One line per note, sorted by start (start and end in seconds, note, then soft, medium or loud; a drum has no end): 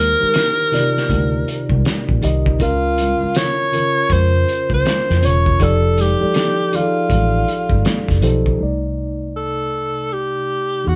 0.00 0.15 D#2 medium
0.00 0.20 D#3 medium
0.00 0.21 D#4 medium
0.00 0.22 G4 medium
0.00 1.86 A#4 loud
0.20 0.66 D#3 medium
0.20 0.67 D#4 medium
0.20 0.67 G4 medium
0.20 0.68 A#4 medium
0.20 muted fingered electric bass stroke soft
0.20 high conga medium
0.34 snare loud
0.34 closed hi-hat medium
0.34 muted conga soft
0.72 2.06 C3 medium
0.72 2.07 D#4 medium
0.72 0.81 F4 medium
0.72 2.08 D5 medium
0.72 snare soft
0.72 closed hi-hat medium
0.72 muted conga soft
0.72 low conga medium
0.80 2.10 G4 medium
0.97 snare soft
1.10 1.43 D2 loud
1.10 kick medium
1.10 closed hi-hat medium
1.10 high conga medium
1.45 closed hi-hat medium
1.45 muted conga soft
1.70 1.83 C2 medium
1.70 kick medium
1.70 high conga medium
1.85 snare medium
1.85 closed hi-hat medium
1.85 high conga medium
2.09 2.22 A#1 medium
2.09 kick medium
2.22 2.57 C2 medium
2.22 2.56 D#3 medium
2.22 2.56 D#4 medium
2.22 2.57 G4 medium
2.22 2.57 D#5 medium
2.22 closed hi-hat medium
2.22 low conga medium
2.46 kick medium
2.59 3.14 C#2 loud
2.59 3.61 C#3 medium
2.59 3.61 C#4 medium
2.59 3.62 F4 medium
2.59 3.39 F4 medium
2.59 3.62 A#4 loud
2.59 kick loud
2.59 closed hi-hat medium
2.59 muted conga soft
2.98 closed hi-hat medium
2.98 muted conga soft
2.98 high conga medium
3.21 muted fingered electric bass stroke soft
3.21 high conga medium
3.35 4.14 C#5 loud
3.35 snare loud
3.35 closed hi-hat medium
3.72 5.06 C#3 medium
3.72 5.07 C#4 medium
3.72 5.07 F4 medium
3.72 5.08 A#4 medium
3.72 closed hi-hat medium
3.72 low conga medium
4.10 4.44 F2 medium
4.10 4.72 C5 loud
4.10 kick medium
4.10 closed hi-hat medium
4.10 muted conga soft
4.10 high conga medium
4.45 closed hi-hat medium
4.45 muted conga soft
4.70 4.83 C#2 medium
4.70 kick medium
4.70 high conga medium
4.74 5.27 C5 medium
4.85 snare loud
4.85 closed hi-hat medium
4.85 high conga medium
5.10 5.22 F2 medium
5.10 snare soft
5.21 5.57 E1 medium
5.21 5.56 C#3 medium
5.21 5.56 C#4 medium
5.21 5.57 F4 medium
5.21 5.57 C#5 medium
5.21 closed hi-hat medium
5.21 muted conga soft
5.21 low conga medium
5.26 5.64 C#5 medium
5.46 kick medium
5.59 6.14 F1 medium
5.59 6.11 F3 loud
5.59 6.12 D#4 medium
5.59 6.12 G4 medium
5.59 6.12 A4 medium
5.59 6.12 D5 loud
5.59 kick loud
5.59 closed hi-hat medium
5.59 muted conga soft
5.63 6.02 A4 medium
5.98 6.78 G4 medium
5.98 closed hi-hat medium
5.98 muted conga soft
5.98 high conga medium
6.20 6.66 F3 medium
6.20 6.67 D#4 medium
6.20 6.67 G4 medium
6.20 6.67 A4 medium
6.20 6.68 D5 medium
6.20 muted fingered electric bass stroke soft
6.20 high conga medium
6.34 snare loud
6.34 closed hi-hat medium
6.34 muted conga soft
6.72 8.06 F3 medium
6.72 8.07 D#4 medium
6.72 8.07 G4 medium
6.72 6.81 G#4 soft
6.72 8.08 D5 medium
6.72 closed hi-hat medium
6.72 muted conga soft
6.72 low conga medium
6.76 8.24 F4 medium
6.80 8.11 A4 medium
7.10 7.44 A1 loud
7.10 kick medium
7.10 closed hi-hat medium
7.10 muted conga soft
7.10 high conga medium
7.45 closed hi-hat medium
7.45 muted conga soft
7.70 7.83 G1 medium
7.70 kick medium
7.70 high conga medium
7.85 snare loud
7.85 closed hi-hat medium
7.85 muted conga soft
7.85 high conga medium
8.09 8.24 F1 medium
8.09 kick medium
8.09 snare soft
8.21 8.57 B1 medium
8.21 8.56 F3 medium
8.21 8.56 D#4 medium
8.21 8.57 G4 medium
8.21 8.57 A4 medium
8.21 8.57 C5 loud
8.21 closed hi-hat medium
8.21 muted conga soft
8.21 low conga medium
8.46 kick medium
8.58 10.82 C2 medium
8.58 10.80 C3 medium
8.58 10.81 A3 medium
8.58 10.82 D#4 medium
8.63 10.82 D5 medium
9.37 10.14 A4 medium
10.12 10.90 G4 medium
10.84 10.96 E2 medium
10.84 10.96 E3 medium
10.84 10.96 D#4 medium
10.84 10.96 F#4 soft
10.84 10.96 G#4 medium
10.88 10.96 F#4 medium